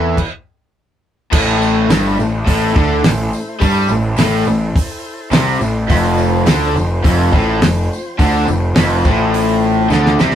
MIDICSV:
0, 0, Header, 1, 6, 480
1, 0, Start_track
1, 0, Key_signature, 0, "minor"
1, 0, Tempo, 573614
1, 1098, Time_signature, 4, 2, 24, 8
1, 8661, End_track
2, 0, Start_track
2, 0, Title_t, "Tonewheel organ"
2, 0, Program_c, 0, 16
2, 1111, Note_on_c, 0, 64, 73
2, 1113, Note_on_c, 0, 72, 74
2, 1118, Note_on_c, 0, 57, 72
2, 2997, Note_off_c, 0, 64, 0
2, 3002, Note_off_c, 0, 72, 0
2, 3007, Note_off_c, 0, 57, 0
2, 3007, Note_on_c, 0, 64, 67
2, 3012, Note_on_c, 0, 72, 64
2, 3015, Note_on_c, 0, 69, 64
2, 4909, Note_off_c, 0, 64, 0
2, 4912, Note_off_c, 0, 72, 0
2, 4913, Note_off_c, 0, 69, 0
2, 4926, Note_on_c, 0, 53, 73
2, 4927, Note_on_c, 0, 60, 72
2, 4933, Note_on_c, 0, 72, 70
2, 6829, Note_off_c, 0, 53, 0
2, 6830, Note_off_c, 0, 60, 0
2, 6833, Note_off_c, 0, 72, 0
2, 6856, Note_on_c, 0, 53, 64
2, 6864, Note_on_c, 0, 72, 71
2, 6869, Note_on_c, 0, 60, 64
2, 8661, Note_off_c, 0, 53, 0
2, 8661, Note_off_c, 0, 60, 0
2, 8661, Note_off_c, 0, 72, 0
2, 8661, End_track
3, 0, Start_track
3, 0, Title_t, "Steel-string acoustic guitar"
3, 0, Program_c, 1, 25
3, 0, Note_on_c, 1, 45, 71
3, 0, Note_on_c, 1, 52, 83
3, 0, Note_on_c, 1, 57, 75
3, 0, Note_on_c, 1, 60, 72
3, 0, Note_on_c, 1, 64, 81
3, 0, Note_on_c, 1, 69, 81
3, 134, Note_off_c, 1, 45, 0
3, 140, Note_off_c, 1, 52, 0
3, 140, Note_off_c, 1, 57, 0
3, 140, Note_off_c, 1, 60, 0
3, 142, Note_off_c, 1, 64, 0
3, 146, Note_off_c, 1, 69, 0
3, 8661, End_track
4, 0, Start_track
4, 0, Title_t, "Overdriven electric guitar"
4, 0, Program_c, 2, 29
4, 0, Note_on_c, 2, 52, 95
4, 131, Note_off_c, 2, 52, 0
4, 1098, Note_on_c, 2, 45, 114
4, 1571, Note_off_c, 2, 45, 0
4, 1579, Note_on_c, 2, 43, 101
4, 1811, Note_off_c, 2, 43, 0
4, 1817, Note_on_c, 2, 45, 72
4, 2009, Note_off_c, 2, 45, 0
4, 2057, Note_on_c, 2, 45, 98
4, 2290, Note_off_c, 2, 45, 0
4, 2293, Note_on_c, 2, 50, 99
4, 2528, Note_off_c, 2, 50, 0
4, 2547, Note_on_c, 2, 45, 69
4, 2734, Note_off_c, 2, 45, 0
4, 3013, Note_on_c, 2, 55, 107
4, 3247, Note_off_c, 2, 55, 0
4, 3265, Note_on_c, 2, 45, 75
4, 3452, Note_off_c, 2, 45, 0
4, 3507, Note_on_c, 2, 45, 93
4, 3733, Note_off_c, 2, 45, 0
4, 3751, Note_on_c, 2, 45, 66
4, 3935, Note_off_c, 2, 45, 0
4, 4462, Note_on_c, 2, 48, 99
4, 4690, Note_off_c, 2, 48, 0
4, 4696, Note_on_c, 2, 45, 73
4, 4886, Note_off_c, 2, 45, 0
4, 4935, Note_on_c, 2, 41, 104
4, 5406, Note_off_c, 2, 41, 0
4, 5414, Note_on_c, 2, 50, 101
4, 5642, Note_on_c, 2, 41, 74
4, 5645, Note_off_c, 2, 50, 0
4, 5839, Note_off_c, 2, 41, 0
4, 5890, Note_on_c, 2, 41, 104
4, 6123, Note_on_c, 2, 45, 108
4, 6124, Note_off_c, 2, 41, 0
4, 6360, Note_off_c, 2, 45, 0
4, 6367, Note_on_c, 2, 41, 73
4, 6561, Note_off_c, 2, 41, 0
4, 6850, Note_on_c, 2, 50, 108
4, 7084, Note_off_c, 2, 50, 0
4, 7086, Note_on_c, 2, 41, 76
4, 7281, Note_off_c, 2, 41, 0
4, 7328, Note_on_c, 2, 41, 100
4, 7562, Note_on_c, 2, 45, 93
4, 7563, Note_off_c, 2, 41, 0
4, 8279, Note_off_c, 2, 45, 0
4, 8282, Note_on_c, 2, 50, 88
4, 8522, Note_off_c, 2, 50, 0
4, 8532, Note_on_c, 2, 48, 97
4, 8661, Note_off_c, 2, 48, 0
4, 8661, End_track
5, 0, Start_track
5, 0, Title_t, "Picked electric bass"
5, 0, Program_c, 3, 34
5, 0, Note_on_c, 3, 40, 90
5, 122, Note_off_c, 3, 40, 0
5, 1106, Note_on_c, 3, 33, 90
5, 1549, Note_off_c, 3, 33, 0
5, 1577, Note_on_c, 3, 31, 95
5, 1800, Note_off_c, 3, 31, 0
5, 1831, Note_on_c, 3, 33, 86
5, 2048, Note_off_c, 3, 33, 0
5, 2064, Note_on_c, 3, 33, 93
5, 2284, Note_off_c, 3, 33, 0
5, 2310, Note_on_c, 3, 38, 95
5, 2527, Note_off_c, 3, 38, 0
5, 2545, Note_on_c, 3, 33, 85
5, 2764, Note_off_c, 3, 33, 0
5, 3023, Note_on_c, 3, 43, 103
5, 3242, Note_off_c, 3, 43, 0
5, 3252, Note_on_c, 3, 33, 83
5, 3477, Note_off_c, 3, 33, 0
5, 3499, Note_on_c, 3, 33, 85
5, 3720, Note_off_c, 3, 33, 0
5, 3734, Note_on_c, 3, 33, 86
5, 3957, Note_off_c, 3, 33, 0
5, 4444, Note_on_c, 3, 36, 104
5, 4671, Note_off_c, 3, 36, 0
5, 4686, Note_on_c, 3, 33, 81
5, 4912, Note_off_c, 3, 33, 0
5, 4932, Note_on_c, 3, 29, 102
5, 5378, Note_off_c, 3, 29, 0
5, 5401, Note_on_c, 3, 38, 98
5, 5629, Note_off_c, 3, 38, 0
5, 5640, Note_on_c, 3, 29, 76
5, 5869, Note_off_c, 3, 29, 0
5, 5895, Note_on_c, 3, 29, 97
5, 6117, Note_off_c, 3, 29, 0
5, 6130, Note_on_c, 3, 33, 96
5, 6354, Note_off_c, 3, 33, 0
5, 6362, Note_on_c, 3, 29, 82
5, 6590, Note_off_c, 3, 29, 0
5, 6853, Note_on_c, 3, 38, 101
5, 7072, Note_off_c, 3, 38, 0
5, 7077, Note_on_c, 3, 29, 73
5, 7307, Note_off_c, 3, 29, 0
5, 7321, Note_on_c, 3, 29, 90
5, 7550, Note_off_c, 3, 29, 0
5, 7571, Note_on_c, 3, 33, 90
5, 8259, Note_off_c, 3, 33, 0
5, 8288, Note_on_c, 3, 38, 95
5, 8514, Note_off_c, 3, 38, 0
5, 8531, Note_on_c, 3, 36, 89
5, 8661, Note_off_c, 3, 36, 0
5, 8661, End_track
6, 0, Start_track
6, 0, Title_t, "Drums"
6, 146, Note_on_c, 9, 36, 88
6, 150, Note_on_c, 9, 49, 77
6, 230, Note_off_c, 9, 36, 0
6, 233, Note_off_c, 9, 49, 0
6, 1108, Note_on_c, 9, 49, 115
6, 1108, Note_on_c, 9, 54, 79
6, 1110, Note_on_c, 9, 36, 108
6, 1191, Note_off_c, 9, 54, 0
6, 1192, Note_off_c, 9, 49, 0
6, 1193, Note_off_c, 9, 36, 0
6, 1353, Note_on_c, 9, 54, 84
6, 1437, Note_off_c, 9, 54, 0
6, 1591, Note_on_c, 9, 46, 57
6, 1594, Note_on_c, 9, 38, 113
6, 1594, Note_on_c, 9, 54, 100
6, 1675, Note_off_c, 9, 46, 0
6, 1677, Note_off_c, 9, 54, 0
6, 1678, Note_off_c, 9, 38, 0
6, 1838, Note_on_c, 9, 54, 77
6, 1922, Note_off_c, 9, 54, 0
6, 2069, Note_on_c, 9, 36, 101
6, 2070, Note_on_c, 9, 46, 65
6, 2152, Note_off_c, 9, 36, 0
6, 2154, Note_off_c, 9, 46, 0
6, 2308, Note_on_c, 9, 36, 113
6, 2317, Note_on_c, 9, 54, 28
6, 2392, Note_off_c, 9, 36, 0
6, 2401, Note_off_c, 9, 54, 0
6, 2545, Note_on_c, 9, 46, 58
6, 2547, Note_on_c, 9, 38, 106
6, 2550, Note_on_c, 9, 54, 96
6, 2628, Note_off_c, 9, 46, 0
6, 2631, Note_off_c, 9, 38, 0
6, 2634, Note_off_c, 9, 54, 0
6, 2788, Note_on_c, 9, 54, 88
6, 2872, Note_off_c, 9, 54, 0
6, 3019, Note_on_c, 9, 54, 74
6, 3026, Note_on_c, 9, 36, 101
6, 3026, Note_on_c, 9, 46, 62
6, 3103, Note_off_c, 9, 54, 0
6, 3109, Note_off_c, 9, 36, 0
6, 3109, Note_off_c, 9, 46, 0
6, 3252, Note_on_c, 9, 54, 77
6, 3335, Note_off_c, 9, 54, 0
6, 3484, Note_on_c, 9, 54, 92
6, 3501, Note_on_c, 9, 46, 62
6, 3504, Note_on_c, 9, 38, 101
6, 3568, Note_off_c, 9, 54, 0
6, 3585, Note_off_c, 9, 46, 0
6, 3587, Note_off_c, 9, 38, 0
6, 3724, Note_on_c, 9, 54, 72
6, 3808, Note_off_c, 9, 54, 0
6, 3980, Note_on_c, 9, 36, 105
6, 3986, Note_on_c, 9, 46, 66
6, 4063, Note_off_c, 9, 36, 0
6, 4070, Note_off_c, 9, 46, 0
6, 4209, Note_on_c, 9, 54, 29
6, 4293, Note_off_c, 9, 54, 0
6, 4449, Note_on_c, 9, 54, 85
6, 4460, Note_on_c, 9, 46, 68
6, 4463, Note_on_c, 9, 38, 112
6, 4533, Note_off_c, 9, 54, 0
6, 4544, Note_off_c, 9, 46, 0
6, 4547, Note_off_c, 9, 38, 0
6, 4694, Note_on_c, 9, 54, 74
6, 4777, Note_off_c, 9, 54, 0
6, 4932, Note_on_c, 9, 54, 65
6, 4935, Note_on_c, 9, 36, 104
6, 4936, Note_on_c, 9, 46, 71
6, 5015, Note_off_c, 9, 54, 0
6, 5019, Note_off_c, 9, 36, 0
6, 5020, Note_off_c, 9, 46, 0
6, 5166, Note_on_c, 9, 54, 74
6, 5250, Note_off_c, 9, 54, 0
6, 5407, Note_on_c, 9, 54, 86
6, 5412, Note_on_c, 9, 46, 61
6, 5414, Note_on_c, 9, 38, 109
6, 5490, Note_off_c, 9, 54, 0
6, 5495, Note_off_c, 9, 46, 0
6, 5498, Note_off_c, 9, 38, 0
6, 5660, Note_on_c, 9, 54, 68
6, 5743, Note_off_c, 9, 54, 0
6, 5894, Note_on_c, 9, 36, 112
6, 5899, Note_on_c, 9, 46, 63
6, 5978, Note_off_c, 9, 36, 0
6, 5983, Note_off_c, 9, 46, 0
6, 6133, Note_on_c, 9, 36, 106
6, 6145, Note_on_c, 9, 54, 30
6, 6217, Note_off_c, 9, 36, 0
6, 6229, Note_off_c, 9, 54, 0
6, 6375, Note_on_c, 9, 46, 56
6, 6377, Note_on_c, 9, 38, 117
6, 6386, Note_on_c, 9, 54, 94
6, 6459, Note_off_c, 9, 46, 0
6, 6461, Note_off_c, 9, 38, 0
6, 6469, Note_off_c, 9, 54, 0
6, 6636, Note_on_c, 9, 54, 74
6, 6720, Note_off_c, 9, 54, 0
6, 6855, Note_on_c, 9, 36, 101
6, 6857, Note_on_c, 9, 46, 55
6, 6865, Note_on_c, 9, 54, 61
6, 6939, Note_off_c, 9, 36, 0
6, 6941, Note_off_c, 9, 46, 0
6, 6949, Note_off_c, 9, 54, 0
6, 7096, Note_on_c, 9, 54, 76
6, 7180, Note_off_c, 9, 54, 0
6, 7327, Note_on_c, 9, 46, 63
6, 7329, Note_on_c, 9, 38, 116
6, 7340, Note_on_c, 9, 54, 90
6, 7411, Note_off_c, 9, 46, 0
6, 7413, Note_off_c, 9, 38, 0
6, 7424, Note_off_c, 9, 54, 0
6, 7573, Note_on_c, 9, 54, 69
6, 7574, Note_on_c, 9, 36, 108
6, 7657, Note_off_c, 9, 54, 0
6, 7658, Note_off_c, 9, 36, 0
6, 7813, Note_on_c, 9, 54, 28
6, 7816, Note_on_c, 9, 46, 59
6, 7896, Note_off_c, 9, 54, 0
6, 7900, Note_off_c, 9, 46, 0
6, 8054, Note_on_c, 9, 54, 26
6, 8138, Note_off_c, 9, 54, 0
6, 8285, Note_on_c, 9, 54, 87
6, 8302, Note_on_c, 9, 38, 65
6, 8369, Note_off_c, 9, 54, 0
6, 8386, Note_off_c, 9, 38, 0
6, 8419, Note_on_c, 9, 38, 73
6, 8502, Note_off_c, 9, 38, 0
6, 8527, Note_on_c, 9, 54, 82
6, 8533, Note_on_c, 9, 38, 96
6, 8610, Note_off_c, 9, 54, 0
6, 8616, Note_off_c, 9, 38, 0
6, 8661, End_track
0, 0, End_of_file